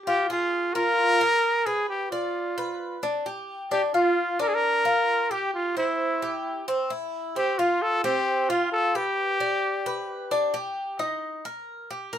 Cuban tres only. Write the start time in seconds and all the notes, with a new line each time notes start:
0.07 F4
0.30 G#4
0.75 F4
1.21 G#4
1.66 B4
2.12 D5
2.58 B4
3.03 D4
3.26 G4
3.71 D4
3.94 F4
4.39 D4
4.85 F4
5.31 G4
5.77 C5
6.22 G4
6.68 C4
6.90 E4
7.36 C4
7.59 F4
8.04 C4
8.50 F4
8.95 B4
9.40 D5
9.86 B4
10.31 D4
10.54 G4
10.99 D#4
11.45 A#4
11.90 G4
12.13 A#4